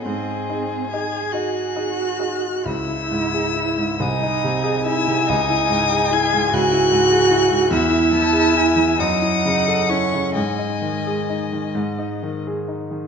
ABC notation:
X:1
M:6/8
L:1/16
Q:3/8=46
K:C#m
V:1 name="Violin"
d4 g'2 f'6 | e'6 d'4 e'2 | d'4 g'2 f'6 | e'6 d'4 c'2 |
g6 z6 |]
V:2 name="Violin"
G12 | z6 g6- | g12 | e2 a2 g2 f6 |
d8- d z3 |]
V:3 name="Cello"
^B,4 G2 F6 | E6 D4 E2 | D4 G2 F6 | E6 D4 C2 |
G,6 z6 |]
V:4 name="Grand piano"
G,,2 [DGd]2 [DGd]2 [DGd]2 [DGd]2 [DGd]2 | C,, E G,, G E G,, ^B,,, D ^B,, G D B,, | C,, E G,, G E G,, C,, E G,, G E G,, | E,, E E, G E E, F,, E C, A E C, |
G,, D D, G D D, G,, D D, G D D, |]